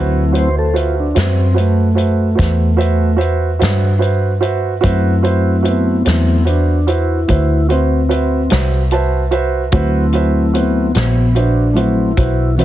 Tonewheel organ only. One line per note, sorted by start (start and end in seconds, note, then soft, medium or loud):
0.00 0.48 F#3 soft
0.00 0.49 A3 soft
0.00 0.49 C4 soft
0.00 0.50 E4 soft
0.39 0.56 C5 medium
0.59 0.76 A4 medium
0.77 0.95 F4 medium
1.00 1.17 D4 medium
1.20 1.58 C4 medium
1.59 3.18 A3 medium
4.85 6.02 F#3 soft
4.85 6.03 A3 soft
4.85 6.03 C4 soft
4.85 6.03 E4 medium
5.68 6.46 B3 medium
6.07 6.43 F#3 soft
6.07 6.43 A3 soft
6.07 6.43 C4 soft
6.07 6.44 E4 soft
6.49 6.87 D4 medium
6.88 7.67 E4 medium
7.72 8.50 C4 medium
9.72 10.91 F#3 medium
9.72 10.91 A3 soft
9.72 10.92 C4 soft
9.72 10.92 E4 medium
10.56 11.34 B3 medium
11.37 11.76 D4 medium
11.74 12.13 F#3 soft
11.74 12.12 A3 soft
11.74 12.13 C4 soft
11.74 12.55 E4 medium
12.57 12.65 E3 medium
12.57 12.65 C4 medium